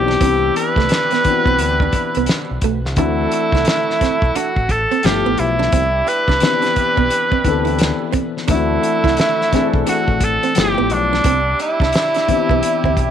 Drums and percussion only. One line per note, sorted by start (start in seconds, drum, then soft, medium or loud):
0.10 snare soft
0.21 kick loud
0.21 closed hi-hat medium
0.56 closed hi-hat medium
0.76 kick medium
0.76 snare soft
0.89 snare loud
0.89 closed hi-hat medium
1.11 snare soft
1.11 closed hi-hat medium
1.24 kick medium
1.24 closed hi-hat medium
1.46 kick loud
1.58 closed hi-hat medium
1.80 kick medium
1.92 kick medium
1.92 closed hi-hat medium
2.15 closed hi-hat soft
2.26 snare loud
2.26 closed hi-hat medium
2.61 kick medium
2.61 closed hi-hat medium
2.85 snare soft
2.96 kick loud
2.96 closed hi-hat medium
3.32 closed hi-hat medium
3.52 kick medium
3.52 snare soft
3.65 snare loud
3.65 closed hi-hat medium
3.90 snare soft
4.01 kick medium
4.01 snare soft
4.01 closed hi-hat medium
4.22 kick loud
4.35 closed hi-hat medium
4.56 kick medium
4.69 kick medium
4.69 closed hi-hat medium
4.92 closed hi-hat soft
5.03 snare loud
5.03 closed hi-hat medium
5.38 closed hi-hat medium
5.62 snare soft
5.72 kick loud
5.72 closed hi-hat medium
6.08 closed hi-hat medium
6.28 kick medium
6.28 snare soft
6.40 snare loud
6.40 closed hi-hat medium
6.62 snare soft
6.62 closed hi-hat medium
6.76 kick medium
6.76 closed hi-hat medium
6.97 kick loud
7.10 closed hi-hat medium
7.32 kick medium
7.45 kick medium
7.45 closed hi-hat medium
7.67 closed hi-hat soft
7.78 snare loud
7.78 closed hi-hat medium
8.13 kick loud
8.13 closed hi-hat medium
8.37 snare soft
8.48 kick loud
8.48 closed hi-hat medium
8.83 closed hi-hat medium
9.04 kick medium
9.04 snare soft
9.17 snare loud
9.17 closed hi-hat medium
9.41 snare soft
9.53 kick medium
9.53 snare soft
9.53 closed hi-hat medium
9.73 kick loud
9.87 closed hi-hat medium
10.08 kick medium
10.20 kick medium
10.20 closed hi-hat medium
10.43 closed hi-hat soft
10.55 snare loud
10.55 closed hi-hat medium
10.90 closed hi-hat medium
11.14 snare soft
11.24 kick loud
11.24 closed hi-hat medium
11.59 closed hi-hat medium
11.80 kick medium
11.80 snare soft
11.93 snare loud
11.93 closed hi-hat medium
12.14 snare soft
12.14 closed hi-hat medium
12.28 kick medium
12.28 closed hi-hat medium
12.49 kick medium
12.63 closed hi-hat medium
12.84 kick loud
12.97 kick medium
12.97 closed hi-hat medium